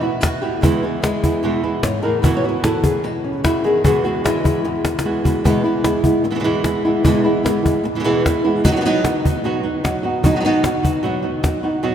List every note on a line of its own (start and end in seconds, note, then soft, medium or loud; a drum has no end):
0.00 0.60 B2 medium
0.00 2.02 E3 medium
0.00 0.22 E4 soft
0.00 0.22 F#4 soft
0.04 0.22 B3 soft
0.20 0.41 F#4 medium
0.20 muted nylon-string guitar stroke medium
0.20 cajon bass medium
0.20 cajon slap loud
0.42 0.62 B3 soft
0.42 0.62 E4 soft
0.42 0.62 F#4 soft
0.42 0.61 G4 medium
0.61 0.82 E2 medium
0.61 0.82 B2 medium
0.61 0.82 E3 medium
0.61 0.82 G#3 medium
0.61 0.82 B3 medium
0.61 0.82 E4 medium
0.61 1.42 G#4 medium
0.61 cajon bass medium
0.83 1.02 E3 soft
0.83 1.03 G#3 soft
0.83 1.02 B3 soft
0.83 1.02 E4 medium
1.02 2.21 G#3 medium
1.02 muted nylon-string guitar stroke medium
1.02 cajon slap loud
1.24 1.43 E3 soft
1.24 1.43 G#3 soft
1.24 1.43 B3 soft
1.24 1.43 E4 soft
1.24 cajon bass medium
1.43 1.63 E2 medium
1.43 1.63 B2 medium
1.43 1.63 E3 medium
1.43 1.63 G#3 medium
1.43 1.63 B3 medium
1.43 1.62 E4 medium
1.43 cajon slap soft
1.63 1.83 E3 soft
1.63 1.83 G#3 soft
1.63 1.83 B3 soft
1.63 1.83 E4 soft
1.83 2.03 G#2 medium
1.83 2.03 C#5 loud
1.83 muted nylon-string guitar stroke medium
1.83 cajon slap medium
2.03 2.23 A2 medium
2.03 2.23 E3 soft
2.03 2.23 G#3 soft
2.03 2.23 B3 soft
2.03 2.23 E4 soft
2.03 2.22 A#4 loud
2.22 2.43 B2 medium
2.22 2.43 E3 medium
2.22 2.43 B3 medium
2.22 2.44 E4 medium
2.22 2.43 F#4 medium
2.22 2.36 B4 medium
2.22 cajon bass medium
2.37 2.48 C#5 loud
2.44 2.64 B3 soft
2.44 2.63 E4 soft
2.44 2.62 F#4 soft
2.49 2.63 B4 medium
2.63 3.43 E3 medium
2.63 3.03 B3 soft
2.63 3.03 E4 soft
2.63 3.03 F#4 medium
2.63 2.84 A4 loud
2.63 cajon slap loud
2.83 3.04 G#4 medium
2.83 cajon bass medium
3.04 3.82 B2 medium
3.04 3.24 A4 loud
3.04 muted nylon-string guitar stroke medium
3.24 3.44 C#4 medium
3.44 3.64 C#3 medium
3.44 3.63 E3 soft
3.44 3.64 B3 medium
3.44 3.64 E4 soft
3.44 3.63 F#4 medium
3.44 cajon bass medium
3.44 cajon slap loud
3.64 3.84 D#3 medium
3.64 3.84 B3 soft
3.64 3.84 E4 soft
3.64 3.83 F#4 soft
3.64 3.83 G#4 medium
3.64 cajon slap soft
3.84 4.03 E2 medium
3.84 4.04 B2 medium
3.84 4.04 E3 medium
3.84 4.04 G#3 medium
3.84 4.04 B3 medium
3.84 4.03 F#4 medium
3.84 4.04 G#4 loud
3.84 cajon bass medium
4.05 4.24 E3 soft
4.05 4.24 G#3 soft
4.05 4.23 B3 soft
4.05 4.23 F#4 soft
4.05 cajon slap soft
4.24 4.64 E3 soft
4.24 4.64 G#3 soft
4.24 4.64 B3 soft
4.24 4.43 E4 medium
4.24 4.63 F#4 medium
4.24 cajon slap loud
4.44 5.04 E4 loud
4.44 cajon bass medium
4.65 5.44 E2 medium
4.65 muted nylon-string guitar stroke medium
4.65 cajon slap soft
4.85 cajon slap loud
4.99 cajon slap medium
5.04 5.24 E3 soft
5.04 5.24 G#3 medium
5.04 5.24 B3 medium
5.04 5.23 F#4 medium
5.24 5.44 E3 soft
5.24 5.44 G#3 soft
5.24 5.44 B3 soft
5.24 5.43 F#4 soft
5.24 5.43 B4 medium
5.24 cajon bass medium
5.44 5.64 E2 medium
5.44 5.64 B2 medium
5.44 5.64 E3 medium
5.44 5.64 G#3 medium
5.44 5.63 B3 medium
5.44 5.63 E4 medium
5.44 cajon bass medium
5.64 5.84 E3 soft
5.64 5.84 G#3 soft
5.64 5.84 B3 soft
5.64 5.83 E4 soft
5.64 cajon slap soft
5.84 6.24 E3 soft
5.84 6.24 G#3 soft
5.84 6.24 B3 soft
5.84 6.23 E4 soft
5.84 cajon slap loud
6.03 6.23 E3 soft
6.03 6.23 G#3 soft
6.03 6.23 B3 soft
6.03 6.23 E4 medium
6.03 cajon bass medium
6.24 muted nylon-string guitar stroke soft
6.24 cajon slap soft
6.31 6.34 B2 soft
6.31 6.34 E3 soft
6.31 6.35 G#3 soft
6.31 6.35 B3 soft
6.31 6.35 E4 soft
6.35 6.38 B2 soft
6.35 6.39 E3 medium
6.35 6.39 G#3 medium
6.35 6.39 B3 medium
6.35 6.40 E4 medium
6.40 6.43 B2 medium
6.40 6.43 E3 medium
6.40 6.43 G#3 medium
6.40 6.44 B3 medium
6.40 6.44 E4 medium
6.44 6.64 E2 medium
6.44 6.64 B2 medium
6.44 6.63 E3 medium
6.44 6.63 G#3 medium
6.44 6.64 B3 medium
6.44 6.64 E4 medium
6.64 6.83 E3 soft
6.64 6.84 G#3 soft
6.64 6.84 B3 soft
6.64 6.84 E4 medium
6.64 cajon slap medium
6.85 7.04 E3 soft
6.85 7.04 G#3 soft
6.85 7.04 B3 soft
6.85 7.04 E4 soft
7.04 7.24 E2 medium
7.04 7.24 B2 medium
7.04 7.24 E3 medium
7.04 7.24 G#3 medium
7.04 7.24 B3 medium
7.04 7.23 E4 medium
7.04 cajon bass medium
7.24 7.44 E3 soft
7.24 7.44 G#3 soft
7.24 7.44 B3 soft
7.24 7.43 E4 medium
7.44 7.84 E3 soft
7.44 7.84 G#3 soft
7.44 7.84 B3 soft
7.44 7.84 E4 soft
7.44 cajon slap loud
7.63 7.83 E3 soft
7.63 7.83 G#3 soft
7.63 7.83 B3 medium
7.63 7.83 E4 medium
7.63 cajon bass medium
7.85 muted nylon-string guitar stroke medium
7.85 cajon slap soft
7.95 7.98 B2 soft
7.95 7.99 E3 soft
7.95 7.99 G#3 soft
7.95 8.00 B3 soft
7.95 8.00 E4 soft
8.00 8.03 B2 medium
8.00 8.04 E3 medium
8.00 8.04 G#3 medium
8.00 8.04 B3 medium
8.00 8.04 E4 medium
8.04 8.24 E2 medium
8.04 8.24 B2 medium
8.04 8.23 E3 medium
8.04 8.24 G#3 medium
8.04 8.24 B3 medium
8.04 8.24 E4 medium
8.24 8.44 E3 soft
8.24 8.44 G#3 soft
8.24 8.44 B3 soft
8.24 8.43 E4 soft
8.24 cajon bass medium
8.24 cajon slap medium
8.44 8.64 E3 soft
8.44 8.64 G#3 soft
8.44 8.63 B3 soft
8.44 8.64 E4 soft
8.64 8.83 B2 medium
8.64 8.84 F#3 medium
8.64 8.84 B3 medium
8.64 8.84 D#4 medium
8.64 8.83 F#4 medium
8.64 cajon bass medium
8.72 8.75 F#3 medium
8.72 8.76 B3 medium
8.72 8.76 D#4 medium
8.72 8.76 F#4 medium
8.76 8.80 F#3 medium
8.76 8.80 B3 medium
8.76 8.80 D#4 medium
8.76 8.81 F#4 medium
8.81 8.84 F#3 medium
8.81 8.84 B3 medium
8.81 9.03 F#4 soft
8.81 cajon slap soft
8.85 9.04 B2 medium
8.85 9.04 F#3 medium
8.85 9.04 B3 soft
8.85 9.04 D#4 soft
9.04 9.43 B3 soft
9.04 9.44 D#4 medium
9.04 9.43 F#4 medium
9.04 muted nylon-string guitar stroke medium
9.04 cajon slap loud
9.25 9.44 B3 soft
9.25 9.44 D#4 soft
9.25 9.44 F#4 soft
9.25 cajon bass medium
9.44 9.63 B2 medium
9.44 9.64 F#3 medium
9.44 9.63 B3 medium
9.44 9.63 D#4 medium
9.44 9.62 F#4 medium
9.44 muted nylon-string guitar stroke medium
9.63 9.83 B3 soft
9.63 9.83 D#4 soft
9.63 9.83 F#4 soft
9.84 10.03 F#3 medium
9.84 10.04 B3 medium
9.84 10.04 D#4 medium
9.84 10.04 F#4 medium
9.84 muted nylon-string guitar stroke medium
9.84 cajon slap loud
10.03 10.23 B3 soft
10.03 10.23 D#4 soft
10.03 10.23 F#4 soft
10.23 10.43 B2 medium
10.23 10.43 F#3 medium
10.23 10.43 B3 medium
10.23 10.43 D#4 medium
10.23 10.42 F#4 medium
10.23 cajon bass medium
10.36 10.39 F#3 soft
10.36 10.39 B3 medium
10.36 10.40 D#4 medium
10.36 10.40 F#4 medium
10.40 10.44 F#3 medium
10.40 10.44 B3 medium
10.40 10.63 D#4 soft
10.40 10.63 F#4 soft
10.44 10.63 B2 medium
10.44 10.64 F#3 medium
10.44 10.62 B3 soft
10.44 cajon slap soft
10.63 11.04 B3 soft
10.63 11.04 D#4 soft
10.63 11.04 F#4 medium
10.63 muted nylon-string guitar stroke soft
10.63 cajon slap medium
10.83 11.02 B3 soft
10.83 11.03 D#4 soft
10.83 11.03 F#4 soft
10.83 cajon bass medium
11.03 11.22 B2 medium
11.03 11.22 F#3 medium
11.03 11.23 B3 medium
11.03 11.22 D#4 medium
11.03 11.21 F#4 medium
11.03 muted nylon-string guitar stroke medium
11.03 cajon slap soft
11.23 11.42 B3 soft
11.23 11.43 D#4 soft
11.23 11.42 F#4 soft
11.43 11.63 F#3 medium
11.43 11.64 B3 medium
11.43 11.64 D#4 medium
11.43 11.62 F#4 medium
11.43 muted nylon-string guitar stroke medium
11.43 cajon bass medium
11.43 cajon slap medium
11.63 11.82 B3 soft
11.63 11.83 D#4 soft
11.63 11.82 F#4 soft
11.83 11.95 B2 medium
11.83 11.95 F#3 medium
11.83 11.95 B3 medium
11.83 11.95 D#4 medium
11.83 11.95 F#4 medium